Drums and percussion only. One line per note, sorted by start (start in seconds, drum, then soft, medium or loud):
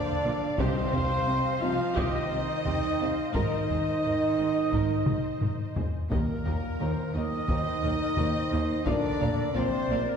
0.58 taiko loud
0.93 taiko low medium
1.97 taiko medium
2.66 taiko low medium
3.35 taiko loud
3.69 taiko low medium
4.73 taiko medium
5.06 taiko mid medium
5.41 taiko low-mid medium
5.76 taiko low loud
6.12 taiko loud
6.47 taiko low medium
7.49 taiko medium
8.17 taiko low medium
8.86 taiko loud
9.21 taiko low medium